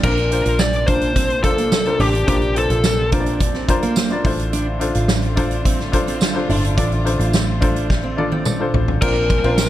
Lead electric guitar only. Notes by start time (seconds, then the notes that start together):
0.04 A#4
0.60 D5
0.87 C5
1.44 A4
2.00 G4
2.29 G4
2.57 A4
9.02 A#4